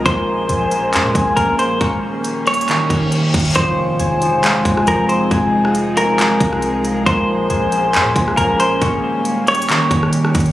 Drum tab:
HH |x-----------------------x-----------x-----------x-----------x-----------x-----------x-----------|x-----------------------x-----------x---x---x---x-----------x-----------x-----------x--x--x--x--|x-----------------------x-----------x-----------x-----------x-----------x-----------x-----------|x-----------------------x-----------x-----------x-----------x-----------x-----------x-----------|
CP |------------------------------------------------x-----------------------------------------------|------------------------------------------------x-----------------------------------------------|------------------------------------------------x-----------------------------------------------|------------------------------------------------x-----------------------------------------------|
SD |------------------------------------------------------------------------------------------------|------------------------------------------------------------------------------------------------|------------------------------------------------------------------r-----------------------------|------------------r-----------------------------------------------r-----------------------------|
BD |o-----------------------------------------------------------o-----------------------------------|o-----------------------------------------------------------o-----------------------o-----------|o-----------------------------------------------------------o-----------------------------------|o-----------------------------------------------------------o-----------------------------------|

HH |x-----------------------x-----------x-----------x-----------x-----------x-----------x-----------|x-----------------------x-----------x---x---x---x-----------x-----------x-----------x--x--x-----|
CP |------------------------------------------------x-----------------------------------------------|------------------------------------------------x-----------------------------------------------|
SD |------------------------------------------------------------------r-----------------------------|------------------------------------------------------------------r-----------r-----------------|
BD |o-----------------------------------------------------------o-----------------------------------|o-----------------------------------------------------------o-----------------------o-----------|